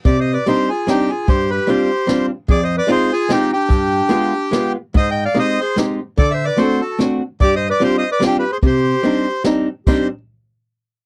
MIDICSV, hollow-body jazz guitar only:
0, 0, Header, 1, 2, 480
1, 0, Start_track
1, 0, Key_signature, -3, "minor"
1, 0, Tempo, 406229
1, 64, Time_signature, 3, 2, 24, 8
1, 4864, Tempo, 410678
1, 12978, End_track
2, 0, Start_track
2, 0, Title_t, "Hollow-body jazz guitar"
2, 0, Program_c, 0, 26
2, 59, Note_on_c, 0, 48, 70
2, 428, Note_off_c, 0, 48, 0
2, 548, Note_on_c, 0, 55, 58
2, 556, Note_on_c, 0, 60, 66
2, 567, Note_on_c, 0, 62, 54
2, 569, Note_on_c, 0, 63, 78
2, 806, Note_off_c, 0, 55, 0
2, 811, Note_off_c, 0, 60, 0
2, 813, Note_off_c, 0, 62, 0
2, 817, Note_off_c, 0, 63, 0
2, 1027, Note_on_c, 0, 55, 53
2, 1038, Note_on_c, 0, 60, 52
2, 1043, Note_on_c, 0, 62, 58
2, 1051, Note_on_c, 0, 63, 52
2, 1286, Note_off_c, 0, 55, 0
2, 1291, Note_off_c, 0, 60, 0
2, 1294, Note_off_c, 0, 62, 0
2, 1298, Note_off_c, 0, 63, 0
2, 1512, Note_on_c, 0, 43, 64
2, 1874, Note_off_c, 0, 43, 0
2, 1974, Note_on_c, 0, 55, 66
2, 1982, Note_on_c, 0, 60, 45
2, 1989, Note_on_c, 0, 62, 57
2, 1999, Note_on_c, 0, 65, 74
2, 2236, Note_off_c, 0, 55, 0
2, 2237, Note_off_c, 0, 60, 0
2, 2243, Note_off_c, 0, 62, 0
2, 2248, Note_off_c, 0, 65, 0
2, 2447, Note_on_c, 0, 55, 54
2, 2452, Note_on_c, 0, 60, 56
2, 2463, Note_on_c, 0, 62, 47
2, 2472, Note_on_c, 0, 65, 62
2, 2709, Note_off_c, 0, 55, 0
2, 2713, Note_off_c, 0, 60, 0
2, 2715, Note_off_c, 0, 62, 0
2, 2722, Note_off_c, 0, 65, 0
2, 2935, Note_on_c, 0, 41, 68
2, 3299, Note_off_c, 0, 41, 0
2, 3393, Note_on_c, 0, 56, 69
2, 3407, Note_on_c, 0, 60, 71
2, 3413, Note_on_c, 0, 63, 55
2, 3421, Note_on_c, 0, 65, 74
2, 3660, Note_off_c, 0, 56, 0
2, 3668, Note_off_c, 0, 60, 0
2, 3671, Note_off_c, 0, 63, 0
2, 3674, Note_off_c, 0, 65, 0
2, 3887, Note_on_c, 0, 56, 65
2, 3896, Note_on_c, 0, 60, 54
2, 3901, Note_on_c, 0, 63, 56
2, 3915, Note_on_c, 0, 65, 72
2, 4149, Note_off_c, 0, 56, 0
2, 4151, Note_off_c, 0, 60, 0
2, 4155, Note_off_c, 0, 63, 0
2, 4162, Note_off_c, 0, 65, 0
2, 4358, Note_on_c, 0, 43, 67
2, 4734, Note_off_c, 0, 43, 0
2, 4834, Note_on_c, 0, 56, 81
2, 4842, Note_on_c, 0, 59, 72
2, 4848, Note_on_c, 0, 65, 71
2, 4856, Note_on_c, 0, 67, 80
2, 5105, Note_off_c, 0, 56, 0
2, 5109, Note_off_c, 0, 59, 0
2, 5112, Note_off_c, 0, 65, 0
2, 5117, Note_off_c, 0, 67, 0
2, 5330, Note_on_c, 0, 56, 53
2, 5344, Note_on_c, 0, 59, 62
2, 5349, Note_on_c, 0, 65, 57
2, 5361, Note_on_c, 0, 67, 64
2, 5603, Note_off_c, 0, 56, 0
2, 5610, Note_off_c, 0, 59, 0
2, 5613, Note_off_c, 0, 65, 0
2, 5616, Note_off_c, 0, 67, 0
2, 5830, Note_on_c, 0, 44, 72
2, 6204, Note_off_c, 0, 44, 0
2, 6300, Note_on_c, 0, 56, 67
2, 6308, Note_on_c, 0, 60, 60
2, 6318, Note_on_c, 0, 63, 57
2, 6327, Note_on_c, 0, 67, 57
2, 6570, Note_off_c, 0, 56, 0
2, 6574, Note_off_c, 0, 60, 0
2, 6580, Note_off_c, 0, 63, 0
2, 6581, Note_off_c, 0, 67, 0
2, 6788, Note_on_c, 0, 56, 58
2, 6794, Note_on_c, 0, 60, 47
2, 6806, Note_on_c, 0, 63, 53
2, 6818, Note_on_c, 0, 67, 63
2, 7049, Note_off_c, 0, 56, 0
2, 7053, Note_off_c, 0, 60, 0
2, 7059, Note_off_c, 0, 63, 0
2, 7065, Note_off_c, 0, 67, 0
2, 7269, Note_on_c, 0, 50, 72
2, 7636, Note_off_c, 0, 50, 0
2, 7735, Note_on_c, 0, 57, 73
2, 7741, Note_on_c, 0, 60, 58
2, 7747, Note_on_c, 0, 62, 56
2, 7758, Note_on_c, 0, 66, 76
2, 8001, Note_off_c, 0, 57, 0
2, 8004, Note_off_c, 0, 60, 0
2, 8007, Note_off_c, 0, 62, 0
2, 8013, Note_off_c, 0, 66, 0
2, 8218, Note_on_c, 0, 57, 54
2, 8224, Note_on_c, 0, 60, 59
2, 8231, Note_on_c, 0, 62, 52
2, 8243, Note_on_c, 0, 66, 61
2, 8478, Note_off_c, 0, 57, 0
2, 8481, Note_off_c, 0, 60, 0
2, 8485, Note_off_c, 0, 62, 0
2, 8491, Note_off_c, 0, 66, 0
2, 8703, Note_on_c, 0, 43, 60
2, 9064, Note_off_c, 0, 43, 0
2, 9169, Note_on_c, 0, 55, 63
2, 9179, Note_on_c, 0, 60, 63
2, 9190, Note_on_c, 0, 62, 52
2, 9193, Note_on_c, 0, 65, 67
2, 9428, Note_off_c, 0, 55, 0
2, 9433, Note_off_c, 0, 60, 0
2, 9435, Note_off_c, 0, 62, 0
2, 9440, Note_off_c, 0, 65, 0
2, 9638, Note_on_c, 0, 55, 60
2, 9647, Note_on_c, 0, 60, 49
2, 9661, Note_on_c, 0, 62, 53
2, 9667, Note_on_c, 0, 65, 60
2, 9900, Note_off_c, 0, 55, 0
2, 9904, Note_off_c, 0, 60, 0
2, 9911, Note_off_c, 0, 62, 0
2, 9914, Note_off_c, 0, 65, 0
2, 10138, Note_on_c, 0, 48, 64
2, 10498, Note_off_c, 0, 48, 0
2, 10608, Note_on_c, 0, 55, 58
2, 10619, Note_on_c, 0, 60, 57
2, 10623, Note_on_c, 0, 62, 57
2, 10633, Note_on_c, 0, 63, 69
2, 10867, Note_off_c, 0, 55, 0
2, 10872, Note_off_c, 0, 62, 0
2, 10873, Note_off_c, 0, 60, 0
2, 10879, Note_off_c, 0, 63, 0
2, 11088, Note_on_c, 0, 55, 60
2, 11099, Note_on_c, 0, 60, 46
2, 11103, Note_on_c, 0, 62, 47
2, 11113, Note_on_c, 0, 63, 73
2, 11354, Note_off_c, 0, 55, 0
2, 11359, Note_off_c, 0, 60, 0
2, 11359, Note_off_c, 0, 62, 0
2, 11366, Note_off_c, 0, 63, 0
2, 11592, Note_on_c, 0, 55, 67
2, 11601, Note_on_c, 0, 60, 60
2, 11602, Note_on_c, 0, 63, 73
2, 11607, Note_on_c, 0, 62, 59
2, 11831, Note_off_c, 0, 55, 0
2, 11833, Note_off_c, 0, 60, 0
2, 11833, Note_off_c, 0, 62, 0
2, 11834, Note_off_c, 0, 63, 0
2, 12978, End_track
0, 0, End_of_file